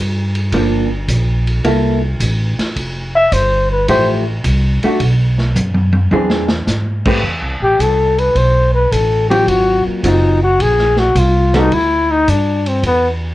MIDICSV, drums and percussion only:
0, 0, Header, 1, 2, 480
1, 0, Start_track
1, 0, Tempo, 559701
1, 450, Time_signature, 4, 2, 24, 8
1, 11445, End_track
2, 0, Start_track
2, 0, Title_t, "Drums"
2, 301, Note_on_c, 9, 51, 48
2, 386, Note_off_c, 9, 51, 0
2, 448, Note_on_c, 9, 36, 21
2, 449, Note_on_c, 9, 51, 62
2, 534, Note_off_c, 9, 36, 0
2, 535, Note_off_c, 9, 51, 0
2, 928, Note_on_c, 9, 36, 22
2, 930, Note_on_c, 9, 44, 53
2, 930, Note_on_c, 9, 51, 57
2, 1014, Note_off_c, 9, 36, 0
2, 1016, Note_off_c, 9, 44, 0
2, 1016, Note_off_c, 9, 51, 0
2, 1263, Note_on_c, 9, 51, 43
2, 1349, Note_off_c, 9, 51, 0
2, 1407, Note_on_c, 9, 36, 17
2, 1411, Note_on_c, 9, 51, 60
2, 1493, Note_off_c, 9, 36, 0
2, 1497, Note_off_c, 9, 51, 0
2, 1889, Note_on_c, 9, 36, 25
2, 1891, Note_on_c, 9, 44, 51
2, 1891, Note_on_c, 9, 51, 68
2, 1974, Note_off_c, 9, 36, 0
2, 1977, Note_off_c, 9, 44, 0
2, 1977, Note_off_c, 9, 51, 0
2, 2221, Note_on_c, 9, 38, 51
2, 2223, Note_on_c, 9, 51, 51
2, 2307, Note_off_c, 9, 38, 0
2, 2309, Note_off_c, 9, 51, 0
2, 2368, Note_on_c, 9, 36, 19
2, 2370, Note_on_c, 9, 51, 58
2, 2454, Note_off_c, 9, 36, 0
2, 2456, Note_off_c, 9, 51, 0
2, 2847, Note_on_c, 9, 36, 21
2, 2848, Note_on_c, 9, 44, 57
2, 2848, Note_on_c, 9, 51, 66
2, 2933, Note_off_c, 9, 36, 0
2, 2933, Note_off_c, 9, 44, 0
2, 2933, Note_off_c, 9, 51, 0
2, 3327, Note_on_c, 9, 36, 21
2, 3328, Note_on_c, 9, 51, 62
2, 3413, Note_off_c, 9, 36, 0
2, 3413, Note_off_c, 9, 51, 0
2, 3806, Note_on_c, 9, 44, 51
2, 3806, Note_on_c, 9, 51, 64
2, 3807, Note_on_c, 9, 36, 23
2, 3892, Note_off_c, 9, 44, 0
2, 3892, Note_off_c, 9, 51, 0
2, 3893, Note_off_c, 9, 36, 0
2, 4137, Note_on_c, 9, 51, 49
2, 4223, Note_off_c, 9, 51, 0
2, 4285, Note_on_c, 9, 51, 59
2, 4287, Note_on_c, 9, 36, 22
2, 4370, Note_off_c, 9, 51, 0
2, 4372, Note_off_c, 9, 36, 0
2, 4614, Note_on_c, 9, 38, 36
2, 4700, Note_off_c, 9, 38, 0
2, 4761, Note_on_c, 9, 48, 44
2, 4763, Note_on_c, 9, 44, 56
2, 4847, Note_off_c, 9, 48, 0
2, 4848, Note_off_c, 9, 44, 0
2, 4924, Note_on_c, 9, 48, 51
2, 5010, Note_off_c, 9, 48, 0
2, 5081, Note_on_c, 9, 48, 61
2, 5167, Note_off_c, 9, 48, 0
2, 5240, Note_on_c, 9, 48, 66
2, 5325, Note_off_c, 9, 48, 0
2, 5400, Note_on_c, 9, 38, 68
2, 5486, Note_off_c, 9, 38, 0
2, 5561, Note_on_c, 9, 38, 87
2, 5646, Note_off_c, 9, 38, 0
2, 5722, Note_on_c, 9, 38, 53
2, 5723, Note_on_c, 9, 44, 55
2, 5807, Note_off_c, 9, 38, 0
2, 5809, Note_off_c, 9, 44, 0
2, 6051, Note_on_c, 9, 49, 70
2, 6054, Note_on_c, 9, 36, 70
2, 6137, Note_off_c, 9, 49, 0
2, 6140, Note_off_c, 9, 36, 0
2, 6204, Note_on_c, 9, 36, 17
2, 6290, Note_off_c, 9, 36, 0
2, 6685, Note_on_c, 9, 36, 20
2, 6690, Note_on_c, 9, 44, 60
2, 6690, Note_on_c, 9, 51, 64
2, 6770, Note_off_c, 9, 36, 0
2, 6775, Note_off_c, 9, 44, 0
2, 6775, Note_off_c, 9, 51, 0
2, 7019, Note_on_c, 9, 51, 44
2, 7105, Note_off_c, 9, 51, 0
2, 7164, Note_on_c, 9, 36, 23
2, 7166, Note_on_c, 9, 51, 53
2, 7250, Note_off_c, 9, 36, 0
2, 7252, Note_off_c, 9, 51, 0
2, 7645, Note_on_c, 9, 36, 20
2, 7651, Note_on_c, 9, 44, 52
2, 7651, Note_on_c, 9, 51, 63
2, 7730, Note_off_c, 9, 36, 0
2, 7737, Note_off_c, 9, 44, 0
2, 7737, Note_off_c, 9, 51, 0
2, 7984, Note_on_c, 9, 51, 47
2, 8069, Note_off_c, 9, 51, 0
2, 8124, Note_on_c, 9, 36, 18
2, 8128, Note_on_c, 9, 51, 56
2, 8210, Note_off_c, 9, 36, 0
2, 8214, Note_off_c, 9, 51, 0
2, 8604, Note_on_c, 9, 36, 17
2, 8608, Note_on_c, 9, 44, 50
2, 8608, Note_on_c, 9, 51, 67
2, 8690, Note_off_c, 9, 36, 0
2, 8694, Note_off_c, 9, 44, 0
2, 8694, Note_off_c, 9, 51, 0
2, 9085, Note_on_c, 9, 36, 25
2, 9089, Note_on_c, 9, 51, 63
2, 9171, Note_off_c, 9, 36, 0
2, 9175, Note_off_c, 9, 51, 0
2, 9247, Note_on_c, 9, 38, 28
2, 9333, Note_off_c, 9, 38, 0
2, 9403, Note_on_c, 9, 38, 44
2, 9489, Note_off_c, 9, 38, 0
2, 9565, Note_on_c, 9, 36, 22
2, 9566, Note_on_c, 9, 44, 50
2, 9566, Note_on_c, 9, 51, 63
2, 9650, Note_off_c, 9, 36, 0
2, 9652, Note_off_c, 9, 44, 0
2, 9652, Note_off_c, 9, 51, 0
2, 9894, Note_on_c, 9, 38, 55
2, 9895, Note_on_c, 9, 51, 44
2, 9979, Note_off_c, 9, 38, 0
2, 9981, Note_off_c, 9, 51, 0
2, 10045, Note_on_c, 9, 36, 19
2, 10048, Note_on_c, 9, 51, 56
2, 10131, Note_off_c, 9, 36, 0
2, 10134, Note_off_c, 9, 51, 0
2, 10527, Note_on_c, 9, 36, 23
2, 10529, Note_on_c, 9, 44, 58
2, 10529, Note_on_c, 9, 51, 61
2, 10612, Note_off_c, 9, 36, 0
2, 10615, Note_off_c, 9, 44, 0
2, 10615, Note_off_c, 9, 51, 0
2, 10859, Note_on_c, 9, 51, 46
2, 10945, Note_off_c, 9, 51, 0
2, 11007, Note_on_c, 9, 36, 25
2, 11008, Note_on_c, 9, 51, 59
2, 11092, Note_off_c, 9, 36, 0
2, 11094, Note_off_c, 9, 51, 0
2, 11445, End_track
0, 0, End_of_file